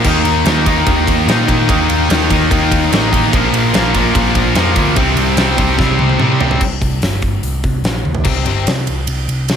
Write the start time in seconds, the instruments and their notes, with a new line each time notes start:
0.04 picked electric bass D#2, distorted electric guitar D#3 A#3 D#4, kick, crash
0.24 picked electric bass D#2, ride
0.45 picked electric bass D#2, distorted electric guitar D#3 A#3 D#4, snare, ride
0.66 distorted electric guitar D#3 A#3 D#4, kick, ride
0.86 picked electric bass D#2, distorted electric guitar D#3 A#3 D#4, kick, ride
1.07 picked electric bass D#2, kick, ride
1.27 picked electric bass A#2, distorted electric guitar D#3 A#3 D#4, snare, ride
1.48 picked electric bass A#2, distorted electric guitar D#3 A#3 D#4, kick, ride
1.68 picked electric bass D#2, distorted electric guitar D#3 A#3 D#4, kick, ride
1.89 picked electric bass D#2, ride
2.09 picked electric bass D#2, distorted electric guitar D#3 A#3 D#4, snare, ride
2.30 picked electric bass D#2, distorted electric guitar D#3 A#3 D#4, kick, ride
2.50 picked electric bass D#2, distorted electric guitar D#3 A#3 D#4, kick, ride
2.72 kick, ride
2.91 picked electric bass A1, distorted electric guitar D#3 A#3 D#4, snare, ride
3.12 distorted electric guitar D#3 A#3 D#4, kick, ride
3.32 picked electric bass A#1, distorted electric guitar A#2 F3 A#3, kick, ride
3.53 picked electric bass A#1, ride
3.73 picked electric bass A#1, distorted electric guitar A#2 F3 A#3, snare, ride
3.94 distorted electric guitar A#2 F3 A#3, kick, ride
4.15 picked electric bass A#1, distorted electric guitar A#2 F3 A#3, kick, ride
4.35 picked electric bass A#1, kick, ride
4.55 picked electric bass F2, distorted electric guitar A#2 F3 A#3, snare, ride
4.76 picked electric bass D2, distorted electric guitar A#2 F3 A#3, kick, ride
4.96 picked electric bass C2, distorted electric guitar C3 G3 C4, kick, ride
5.15 picked electric bass C2, ride
5.37 picked electric bass C2, distorted electric guitar C3 G3 C4, snare, ride
5.57 picked electric bass C2, distorted electric guitar C3 G3 C4, kick, ride
5.78 picked electric bass C2, distorted electric guitar C3 G3 C4, kick, snare
5.99 high tom
6.09 high tom
6.19 distorted electric guitar C3 G3 C4, picked electric bass C3, mid tom
6.40 distorted electric guitar C3 G3 C4, floor tom
6.51 floor tom
6.61 picked electric bass C2, kick, crash
6.81 picked electric bass C2, kick, open hi-hat
7.02 picked electric bass G1, snare, open hi-hat
7.22 kick, open hi-hat
7.43 picked electric bass C2, open hi-hat
7.64 picked electric bass C2, kick, open hi-hat
7.84 picked electric bass A#1, snare, open hi-hat
8.05 picked electric bass D#2, high tom
8.15 floor tom
8.24 picked electric bass C2, distorted electric guitar C3 G3 C4, kick, crash
8.45 picked electric bass G1, distorted electric guitar C3 G3 C4, ride
8.67 picked electric bass C3, snare, ride
8.87 picked electric bass C2, ride
9.07 picked electric bass C2, ride
9.28 picked electric bass C2, ride
9.48 picked electric bass C3, snare, ride